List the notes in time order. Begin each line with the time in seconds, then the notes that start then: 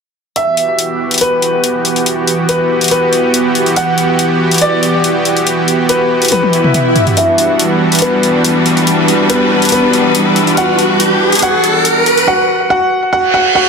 0.36 E3 B3 F#4 G4 E5, closed hi-hat
0.57 closed hi-hat
0.79 closed hi-hat
1.11 closed hi-hat
1.14 closed hi-hat
1.18 closed hi-hat
1.21 B4, closed hi-hat
1.42 closed hi-hat
1.64 closed hi-hat
1.85 closed hi-hat
1.96 closed hi-hat
2.06 closed hi-hat
2.27 closed hi-hat
2.49 B4, closed hi-hat
2.81 closed hi-hat
2.84 closed hi-hat
2.88 closed hi-hat
2.91 B4, closed hi-hat
3.13 closed hi-hat
3.34 closed hi-hat
3.55 closed hi-hat
3.66 closed hi-hat
3.76 F#5, closed hi-hat
3.98 closed hi-hat
4.19 closed hi-hat
4.51 closed hi-hat
4.54 closed hi-hat
4.58 closed hi-hat
4.61 D5, closed hi-hat
4.83 closed hi-hat
5.04 closed hi-hat
5.25 closed hi-hat
5.37 closed hi-hat
5.47 closed hi-hat
5.68 closed hi-hat
5.89 B4, closed hi-hat
6.22 closed hi-hat
6.25 closed hi-hat
6.28 closed hi-hat
6.32 B4, closed hi-hat, high tom, swell
6.43 high tom
6.53 closed hi-hat
6.64 mid tom
6.74 closed hi-hat, mid tom
6.96 closed hi-hat, mid tom
7.07 closed hi-hat, mid tom
7.17 E3 G3 B3 E4 F#4 E5, closed hi-hat, riser
7.24 D4
7.38 closed hi-hat
7.59 closed hi-hat
7.64 G3
7.92 closed hi-hat
7.95 closed hi-hat
7.99 B4, closed hi-hat
8.02 B3, closed hi-hat
8.23 closed hi-hat
8.35 B4
8.44 closed hi-hat
8.66 closed hi-hat
8.77 closed hi-hat
8.87 closed hi-hat
9.08 closed hi-hat
9.30 B3 B4, closed hi-hat
9.62 closed hi-hat
9.65 closed hi-hat
9.69 B3, closed hi-hat
9.72 B4, closed hi-hat
9.93 closed hi-hat
10.15 closed hi-hat
10.36 closed hi-hat
10.47 closed hi-hat
10.57 F#4 F#5, closed hi-hat
10.79 closed hi-hat
11.00 closed hi-hat
11.32 closed hi-hat
11.35 closed hi-hat
11.39 closed hi-hat
11.42 F#4 F#5, closed hi-hat
11.64 closed hi-hat
11.85 closed hi-hat
12.06 closed hi-hat
12.17 closed hi-hat
12.28 F#4 F#5
12.70 F#4 F#5
13.13 F#4 F#5, reverse cymbal
13.34 F#4 F#5
13.55 F#4 F#5